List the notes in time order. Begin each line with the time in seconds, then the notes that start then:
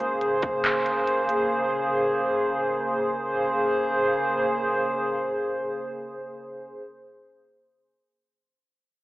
Already playing: C#3 A#3 G#4 C5
0.21 closed hi-hat
0.42 kick, closed hi-hat
0.64 clap, closed hi-hat
0.86 closed hi-hat
1.07 closed hi-hat
1.29 closed hi-hat
3.23 C#3 A#3 G#4 C5